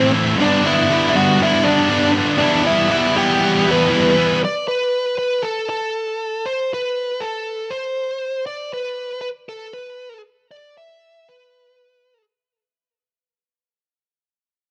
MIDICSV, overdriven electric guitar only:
0, 0, Header, 1, 2, 480
1, 0, Start_track
1, 0, Tempo, 503778
1, 367, Time_signature, 4, 2, 24, 8
1, 5647, Tempo, 507185
1, 13951, End_track
2, 0, Start_track
2, 0, Title_t, "Overdriven electric guitar"
2, 0, Program_c, 0, 29
2, 0, Note_on_c, 0, 45, 95
2, 0, Note_on_c, 0, 52, 89
2, 0, Note_on_c, 0, 57, 105
2, 0, Note_on_c, 0, 60, 88
2, 105, Note_on_c, 0, 64, 81
2, 111, Note_off_c, 0, 60, 0
2, 122, Note_on_c, 0, 60, 70
2, 123, Note_off_c, 0, 57, 0
2, 135, Note_on_c, 0, 57, 62
2, 341, Note_off_c, 0, 64, 0
2, 342, Note_off_c, 0, 45, 0
2, 347, Note_off_c, 0, 52, 0
2, 350, Note_off_c, 0, 60, 0
2, 352, Note_on_c, 0, 43, 104
2, 356, Note_off_c, 0, 57, 0
2, 357, Note_on_c, 0, 50, 91
2, 367, Note_on_c, 0, 55, 100
2, 377, Note_on_c, 0, 59, 102
2, 383, Note_on_c, 0, 62, 103
2, 586, Note_off_c, 0, 62, 0
2, 597, Note_on_c, 0, 62, 91
2, 610, Note_off_c, 0, 59, 0
2, 614, Note_on_c, 0, 59, 80
2, 624, Note_off_c, 0, 55, 0
2, 628, Note_on_c, 0, 55, 59
2, 832, Note_off_c, 0, 50, 0
2, 838, Note_off_c, 0, 43, 0
2, 843, Note_on_c, 0, 50, 86
2, 850, Note_off_c, 0, 55, 0
2, 853, Note_on_c, 0, 55, 93
2, 862, Note_off_c, 0, 59, 0
2, 865, Note_off_c, 0, 62, 0
2, 865, Note_on_c, 0, 59, 96
2, 876, Note_on_c, 0, 62, 97
2, 1059, Note_off_c, 0, 62, 0
2, 1070, Note_on_c, 0, 62, 87
2, 1081, Note_off_c, 0, 59, 0
2, 1085, Note_on_c, 0, 59, 96
2, 1086, Note_off_c, 0, 50, 0
2, 1086, Note_off_c, 0, 55, 0
2, 1090, Note_on_c, 0, 55, 95
2, 1097, Note_on_c, 0, 50, 86
2, 1100, Note_on_c, 0, 43, 72
2, 1319, Note_off_c, 0, 50, 0
2, 1327, Note_off_c, 0, 55, 0
2, 1330, Note_on_c, 0, 50, 86
2, 1339, Note_on_c, 0, 55, 87
2, 1347, Note_off_c, 0, 59, 0
2, 1353, Note_off_c, 0, 62, 0
2, 1358, Note_on_c, 0, 59, 76
2, 1364, Note_on_c, 0, 62, 82
2, 1559, Note_off_c, 0, 62, 0
2, 1570, Note_on_c, 0, 62, 76
2, 1572, Note_off_c, 0, 43, 0
2, 1577, Note_off_c, 0, 59, 0
2, 1588, Note_on_c, 0, 59, 62
2, 1595, Note_off_c, 0, 55, 0
2, 1607, Note_on_c, 0, 55, 64
2, 1790, Note_on_c, 0, 43, 93
2, 1797, Note_off_c, 0, 50, 0
2, 1801, Note_off_c, 0, 55, 0
2, 1809, Note_off_c, 0, 59, 0
2, 1809, Note_on_c, 0, 50, 108
2, 1812, Note_on_c, 0, 55, 109
2, 1818, Note_off_c, 0, 62, 0
2, 1820, Note_on_c, 0, 59, 101
2, 1830, Note_on_c, 0, 62, 97
2, 2033, Note_off_c, 0, 62, 0
2, 2045, Note_on_c, 0, 62, 73
2, 2059, Note_off_c, 0, 59, 0
2, 2070, Note_on_c, 0, 59, 69
2, 2076, Note_off_c, 0, 55, 0
2, 2087, Note_on_c, 0, 55, 56
2, 2262, Note_off_c, 0, 43, 0
2, 2269, Note_off_c, 0, 62, 0
2, 2271, Note_off_c, 0, 50, 0
2, 2276, Note_off_c, 0, 55, 0
2, 2276, Note_on_c, 0, 52, 101
2, 2282, Note_off_c, 0, 59, 0
2, 2287, Note_on_c, 0, 55, 100
2, 2291, Note_on_c, 0, 59, 107
2, 2311, Note_on_c, 0, 64, 113
2, 2506, Note_off_c, 0, 64, 0
2, 2518, Note_on_c, 0, 64, 80
2, 2526, Note_off_c, 0, 59, 0
2, 2538, Note_on_c, 0, 59, 75
2, 2539, Note_off_c, 0, 55, 0
2, 2550, Note_on_c, 0, 55, 68
2, 2741, Note_off_c, 0, 52, 0
2, 2752, Note_on_c, 0, 52, 81
2, 2758, Note_off_c, 0, 55, 0
2, 2769, Note_off_c, 0, 59, 0
2, 2769, Note_on_c, 0, 55, 92
2, 2776, Note_off_c, 0, 64, 0
2, 2780, Note_on_c, 0, 59, 91
2, 2788, Note_on_c, 0, 64, 106
2, 2992, Note_off_c, 0, 64, 0
2, 3003, Note_on_c, 0, 64, 89
2, 3007, Note_off_c, 0, 59, 0
2, 3017, Note_off_c, 0, 55, 0
2, 3018, Note_on_c, 0, 59, 94
2, 3025, Note_off_c, 0, 52, 0
2, 3028, Note_on_c, 0, 55, 81
2, 3037, Note_on_c, 0, 52, 67
2, 3231, Note_off_c, 0, 52, 0
2, 3243, Note_on_c, 0, 52, 74
2, 3250, Note_off_c, 0, 55, 0
2, 3262, Note_on_c, 0, 55, 79
2, 3264, Note_off_c, 0, 59, 0
2, 3268, Note_off_c, 0, 64, 0
2, 3275, Note_on_c, 0, 59, 80
2, 3280, Note_on_c, 0, 64, 76
2, 3461, Note_off_c, 0, 64, 0
2, 3473, Note_on_c, 0, 64, 73
2, 3484, Note_off_c, 0, 59, 0
2, 3495, Note_off_c, 0, 55, 0
2, 3496, Note_on_c, 0, 59, 67
2, 3506, Note_on_c, 0, 55, 58
2, 3702, Note_off_c, 0, 52, 0
2, 3711, Note_off_c, 0, 55, 0
2, 3713, Note_on_c, 0, 52, 89
2, 3719, Note_off_c, 0, 59, 0
2, 3723, Note_on_c, 0, 55, 98
2, 3730, Note_on_c, 0, 59, 107
2, 3734, Note_off_c, 0, 64, 0
2, 3745, Note_on_c, 0, 64, 99
2, 3939, Note_off_c, 0, 64, 0
2, 3950, Note_on_c, 0, 64, 77
2, 3964, Note_off_c, 0, 59, 0
2, 3975, Note_on_c, 0, 59, 65
2, 3980, Note_off_c, 0, 55, 0
2, 3991, Note_on_c, 0, 55, 64
2, 4182, Note_off_c, 0, 64, 0
2, 4183, Note_off_c, 0, 52, 0
2, 4194, Note_off_c, 0, 59, 0
2, 4202, Note_off_c, 0, 55, 0
2, 13951, End_track
0, 0, End_of_file